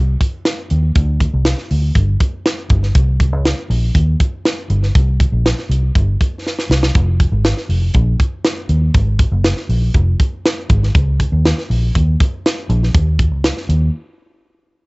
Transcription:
Already playing: C2
0.21 kick, closed hi-hat
0.45 snare, closed hi-hat
0.70 D#2, closed hi-hat
0.95 D2, kick, closed hi-hat
1.20 kick, closed hi-hat
1.34 C2
1.45 snare, closed hi-hat
1.58 snare
1.71 D2, open hi-hat
1.95 G1, kick, closed hi-hat
2.20 kick, closed hi-hat
2.46 snare, closed hi-hat
2.70 G1, kick, closed hi-hat
2.83 snare
2.95 C2, kick, closed hi-hat
3.20 kick, closed hi-hat
3.33 C#2
3.45 snare, closed hi-hat
3.70 A#1, open hi-hat
3.95 D#2, kick, closed hi-hat
4.20 kick, closed hi-hat
4.45 snare, closed hi-hat
4.70 G1, closed hi-hat
4.83 snare
4.95 C2, kick, closed hi-hat
5.20 kick, closed hi-hat
5.32 A#1
5.46 snare, closed hi-hat
5.59 snare
5.69 C2, closed hi-hat
5.95 G1, kick, closed hi-hat
6.21 kick, closed hi-hat
6.46 snare
6.59 snare
6.69 C2, snare
6.83 snare
6.95 F1, kick, closed hi-hat
7.20 kick, closed hi-hat
7.32 G#1
7.45 snare, closed hi-hat
7.57 snare
7.69 F1, open hi-hat
7.94 A#1, kick, closed hi-hat
8.20 kick, closed hi-hat
8.45 snare, closed hi-hat
8.69 D#2, closed hi-hat
8.94 G#1, kick, closed hi-hat
9.19 kick, closed hi-hat
9.32 F#1
9.44 snare, closed hi-hat
9.57 snare
9.69 A#1, open hi-hat
9.94 F1, kick, closed hi-hat
10.20 kick, closed hi-hat
10.46 snare, closed hi-hat
10.69 G#1, kick, closed hi-hat
10.83 snare
10.95 C#2, kick, closed hi-hat
11.20 kick, closed hi-hat
11.32 D#2
11.45 snare, closed hi-hat
11.58 snare
11.70 A#1, open hi-hat
11.95 D#2, kick, closed hi-hat
12.20 kick, closed hi-hat
12.46 snare, closed hi-hat
12.69 A#1, closed hi-hat
12.83 snare
12.94 D#2, kick, closed hi-hat
13.19 kick, closed hi-hat
13.31 C#2
13.44 snare, closed hi-hat
13.57 snare
13.69 D#2, closed hi-hat

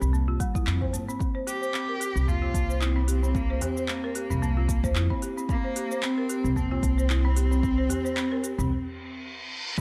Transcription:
0.01 C2 C4, tabla tin, tabla ge, shaker
0.13 A#3, shaker
0.28 F4, tabla tin
0.40 G3, kick, open hi-hat, shaker
0.55 E4, kick, shaker
0.67 F2 C4, clap, shaker
0.81 C5, kick, tabla na, tabla tin
0.93 G1 A#3, open hi-hat, shaker
1.08 C4, shaker
1.20 C4, kick, shaker
1.35 C5
1.47 G4, open hi-hat, shaker
1.62 C5, shaker
1.74 C4, clap, shaker
1.89 A#4
2.00 G4, open hi-hat, shaker
2.15 C2 C4, tabla tin, shaker
2.27 A#3 F4, kick, tabla ge, shaker
2.42 F4, tabla na
2.54 C2 A#3, kick, open hi-hat, shaker
2.69 C5, shaker
2.81 C4 E4, clap, shaker
2.96 C4, tabla tin
3.08 C4 G4, open hi-hat, shaker
3.23 C4, tabla na, tabla tin, shaker
3.35 A#3 C4, kick, shaker
3.50 C5
3.61 C4 G4, open hi-hat, tabla na, tabla ge, shaker
3.77 C5, shaker
3.88 A#3 C4, clap, shaker
4.04 A#4, tabla na
4.15 G4, open hi-hat, shaker
4.30 C2 C4, tabla tin, tabla ge, shaker
4.42 A#3, shaker
4.57 F4, tabla tin
4.69 A#3, kick, open hi-hat, shaker
4.84 C5, kick, shaker
4.96 F2 E4, clap, shaker
5.10 C4, kick, tabla na, tabla tin
5.22 G4, open hi-hat, shaker
5.37 C4, shaker
5.49 A#3 C4, kick, shaker
5.64 C5
5.76 G4, open hi-hat, shaker
5.91 C5, shaker
6.03 C4, clap, shaker
6.18 A#4
6.29 G4, open hi-hat, shaker
6.44 C2 C4, tabla tin, shaker
6.56 A#3 C4, kick, tabla ge, shaker
6.71 F4, tabla na
6.83 C2 A#3, kick, open hi-hat, shaker
6.98 C5, shaker
7.09 E4, clap, shaker
7.25 C4, tabla tin
7.36 G4, open hi-hat, shaker
7.51 C4, tabla na, tabla tin, shaker
7.63 C4, kick, shaker
7.78 C5
7.90 G4, open hi-hat, tabla na, tabla ge, shaker
8.05 C5, tabla tin, shaker
8.17 C4, clap, shaker
8.32 A#4, tabla na
8.43 G4, open hi-hat, shaker
8.59 C2 C4, tabla tin, tabla ge, shaker
8.71 reverse cymbal
9.78 C4, kick

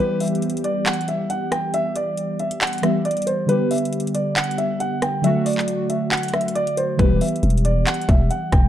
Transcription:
Already playing: E3 G3
0.00 B3 G4 B4
0.20 E5, closed hi-hat, open hi-hat
0.28 closed hi-hat
0.35 closed hi-hat
0.42 closed hi-hat
0.50 closed hi-hat
0.57 closed hi-hat
0.64 D5, closed hi-hat
0.86 F#5, clap, closed hi-hat
0.93 closed hi-hat
1.01 closed hi-hat
1.08 E5, closed hi-hat
1.30 F#5, closed hi-hat
1.51 G5, cross-stick, closed hi-hat
1.74 E5, closed hi-hat
1.96 D5, closed hi-hat
2.17 closed hi-hat
2.39 E5, closed hi-hat
2.51 closed hi-hat
2.61 F#5, clap, closed hi-hat
2.67 closed hi-hat
2.73 closed hi-hat
2.78 E3, closed hi-hat
2.83 G3 B3 G4 E5, cross-stick, closed hi-hat
3.05 D5, closed hi-hat
3.11 closed hi-hat
3.17 closed hi-hat
3.22 closed hi-hat
3.27 C5, closed hi-hat
3.46 D3 G3 B3 B4, closed hi-hat
3.51 G4
3.71 E5, closed hi-hat, open hi-hat
3.78 closed hi-hat
3.85 closed hi-hat
3.93 closed hi-hat
4.00 closed hi-hat
4.07 closed hi-hat
4.14 D5, closed hi-hat
4.36 F#5, clap, closed hi-hat
4.44 closed hi-hat
4.51 closed hi-hat
4.58 E5, closed hi-hat
4.80 F#5, closed hi-hat
5.02 G5, cross-stick, closed hi-hat
5.22 D3 F#3 A3 E5, closed hi-hat
5.26 F#4
5.46 D5, closed hi-hat, open hi-hat
5.53 closed hi-hat
5.58 clap, closed hi-hat
5.68 closed hi-hat
5.90 E5, closed hi-hat
6.12 F#5, clap, closed hi-hat
6.17 closed hi-hat
6.23 closed hi-hat
6.28 closed hi-hat
6.33 E5, cross-stick, closed hi-hat
6.41 closed hi-hat
6.48 closed hi-hat
6.55 D5, closed hi-hat
6.67 closed hi-hat
6.77 C5, closed hi-hat
6.97 E1 E3 G3 B3 B4, kick, closed hi-hat
7.02 G4
7.21 E5, closed hi-hat, open hi-hat
7.28 closed hi-hat
7.36 closed hi-hat
7.43 E1, closed hi-hat
7.50 closed hi-hat
7.58 closed hi-hat
7.65 D5, closed hi-hat
7.87 F#5, clap, closed hi-hat
7.94 closed hi-hat
8.01 closed hi-hat
8.09 E1 E5, kick, closed hi-hat
8.30 F#5, closed hi-hat
8.52 E1 G5, kick, cross-stick, closed hi-hat

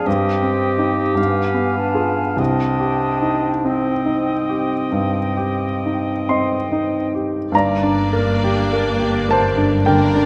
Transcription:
0.06 G2 C4 G4 D#5 G5
0.43 C4
0.78 D#4 G4
1.15 G2 B3 F5 G#5
1.54 B3
1.77 D4
1.95 F4 G#4
2.37 C2 C4 D4 D#5 G5
2.80 G4
3.22 D#4
3.64 C4 D#5 G5
4.06 D#4
4.49 G4
4.92 G2
5.37 G4
5.86 D#4
6.29 C4 D#5 C6
6.72 D#4
7.15 G4
7.52 G1 G2 A#3 D4 D5 A#5
7.57 D5
7.83 D4
8.13 A#4
8.44 G4
8.73 A#3
8.99 G4
9.29 A#3 C5 A5
9.58 D4
9.85 D3 A#3 D4 A#4 D5 G5
10.15 D4

